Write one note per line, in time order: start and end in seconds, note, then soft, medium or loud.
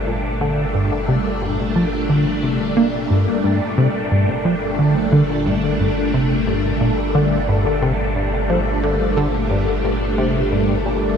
0.00 3.41 G1 medium
0.00 11.17 A#2 medium
0.00 11.17 G3 medium
0.00 11.17 A3 medium
0.00 11.17 D4 medium
0.00 11.17 A4 medium
0.07 0.17 A#2 medium
0.41 0.65 D3 loud
0.75 0.91 G2 medium
1.08 1.18 C3 loud
1.42 1.58 G2 medium
1.76 1.85 F3 medium
2.10 2.26 D3 medium
2.43 2.59 C3 medium
2.77 2.86 A#3 loud
3.10 3.27 G2 medium
3.44 11.17 G1 medium
3.44 3.60 G2 medium
3.78 3.87 C3 loud
4.11 4.28 G2 medium
4.45 4.55 F3 medium
4.79 4.95 D3 medium
5.12 5.22 D3 medium
5.46 5.62 G2 medium
5.80 5.90 G2 medium
6.14 6.38 C3 medium
6.47 6.72 G2 medium
6.81 6.91 A#2 medium
7.15 7.39 D3 loud
7.49 7.65 G2 medium
7.82 7.92 C3 loud
8.16 8.32 G2 medium
8.50 8.59 F3 medium
8.83 9.00 D3 medium
9.17 9.27 D3 loud
9.51 9.67 G2 medium
9.84 9.94 G2 medium
10.18 10.42 C3 medium
10.52 10.76 G2 medium
10.86 10.95 A#2 medium